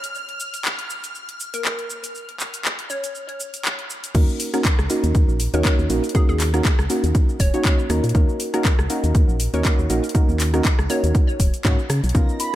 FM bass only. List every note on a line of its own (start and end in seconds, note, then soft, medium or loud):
4.15 4.26 D#2 loud
4.79 4.88 C#2 medium
5.04 5.13 D#2 loud
5.15 5.26 D#2 loud
5.29 5.48 A#1 medium
5.54 5.63 D#2 medium
5.79 5.88 D#2 loud
5.90 6.01 A#1 medium
6.29 6.61 D#2 medium
6.79 6.88 C#2 medium
7.04 7.13 D#2 loud
7.40 7.51 D#1 medium
7.90 8.01 D#2 loud
8.04 8.13 A#2 loud
8.15 8.26 D#2 loud
8.79 8.88 C#2 medium
9.04 9.13 D#2 loud
9.15 9.26 D#2 medium
9.29 9.48 A#1 medium
9.54 9.63 D#2 loud
9.79 9.88 D#2 loud
9.90 10.01 A#1 medium
10.29 10.61 D#2 medium
10.79 10.88 C#2 medium
11.04 11.13 D#2 loud
11.40 11.51 D#1 medium
11.65 11.76 G#2 loud
11.90 12.01 C#3 medium
12.04 12.13 B1 loud
12.15 12.26 C#2 loud